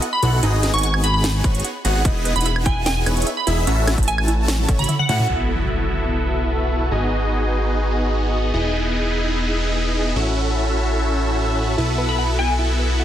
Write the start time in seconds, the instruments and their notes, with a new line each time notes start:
0.02 synth arpeggio sound F#5, closed hi-hat
0.13 synth pluck B5
0.23 analog synth bass B1, supersaw synth B3 E4 F#4 A4 F#5, synth arpeggio sound F#4, digital synth lead F#5, closed hi-hat
0.43 analog synth bass G#1, supersaw synth B3 D#4 F#4 G#4 D#5, synth arpeggio sound D#4, digital synth lead D#5, closed hi-hat
0.63 synth arpeggio sound B4, snare, closed hi-hat
0.74 analog synth bass G#1, supersaw synth B3 D#4 F#4 G#4 G#5, digital synth lead G#5, synth pluck C#6, closed hi-hat
0.78 closed hi-hat
0.83 synth arpeggio sound F#5, synth pluck C#6, closed hi-hat
0.94 high woodblock
1.04 synth arpeggio sound F#4, synth pluck B5, closed hi-hat
1.14 synth pluck B5
1.24 synth arpeggio sound D#4, snare, closed hi-hat
1.44 analog synth bass G#1, supersaw synth D#4 F#4 G#4 C#5, synth arpeggio sound B4, digital synth lead C#5, kick, closed hi-hat
1.55 closed hi-hat
1.60 closed hi-hat
1.64 synth arpeggio sound F#5, closed hi-hat
1.85 analog synth bass G#1, supersaw synth B3 D#4 F#4 G#4 F#5, synth arpeggio sound F#4, digital synth lead F#5, closed hi-hat
2.05 analog synth bass E1, synth arpeggio sound D#4, digital synth lead D#5, kick, closed hi-hat
2.25 synth arpeggio sound B4, closed hi-hat
2.36 analog synth bass E1, supersaw synth B3 D#4 E4 G#4, digital synth lead F#5, synth pluck B5, closed hi-hat
2.41 closed hi-hat
2.46 synth arpeggio sound E5, synth pluck B5, closed hi-hat
2.56 high woodblock
2.66 synth arpeggio sound E4, synth pluck G#5, kick, closed hi-hat
2.86 synth arpeggio sound D#4, synth pluck G#5, snare, closed hi-hat
3.06 analog synth bass E1, supersaw synth B3 D#4 E4 G#4 C#5, synth arpeggio sound B4, digital synth lead C#5, closed hi-hat, high woodblock
3.17 closed hi-hat
3.22 closed hi-hat
3.27 synth arpeggio sound E5, closed hi-hat
3.37 synth pluck B5
3.47 analog synth bass E1, supersaw synth B3 D#4 E4 G#4 E5, synth arpeggio sound E4, digital synth lead E5, closed hi-hat
3.67 analog synth bass A1, synth arpeggio sound C#4, supersaw synth C#4 E4 F#4 A4 E5, digital synth lead E5, closed hi-hat
3.87 synth arpeggio sound A4, snare, closed hi-hat, high woodblock
3.98 analog synth bass A1, supersaw synth C#4 E4 A4 A5, digital synth lead A5, kick, closed hi-hat
4.03 closed hi-hat
4.08 synth arpeggio sound E5, synth pluck G#5, closed hi-hat
4.18 high woodblock
4.28 synth arpeggio sound E4, closed hi-hat
4.48 synth arpeggio sound C#4, snare, closed hi-hat, high tom
4.59 high tom
4.68 analog synth bass A1, supersaw synth C#4 E4 F#4 A4 C#5, synth arpeggio sound A4, digital synth lead C#5, kick, closed hi-hat
4.79 synth pluck B5, closed hi-hat, mid tom
4.84 closed hi-hat
4.89 synth arpeggio sound E5, closed hi-hat, mid tom
4.99 synth pluck F#5, mid tom
5.09 analog synth bass A2, supersaw synth C#4 E4 F#4 A4 F#5, synth arpeggio sound E4, digital synth lead F#5, synth pluck F#5, closed hi-hat, mid tom
5.20 mid tom
5.29 analog synth bass B1, supersaw synth B3 E4 F#4 A4 E5, impact
6.91 analog synth bass G#1, supersaw synth B3 D#4 F#4 G#4 D#5
8.54 analog synth bass E1, supersaw synth B3 D#4 E4 G#4 D#5
10.16 analog synth bass A1, supersaw synth C#4 E4 F#4 A4 E5
11.78 analog synth bass B1, supersaw synth B3 E4 F#4 A4 E5, synth arpeggio sound E4
11.98 synth arpeggio sound B4
12.09 synth pluck B5
12.18 synth arpeggio sound F#5, synth pluck B5
12.39 synth arpeggio sound E4, synth pluck G#5
12.59 synth arpeggio sound E4
12.79 synth arpeggio sound B4
13.00 synth arpeggio sound F#5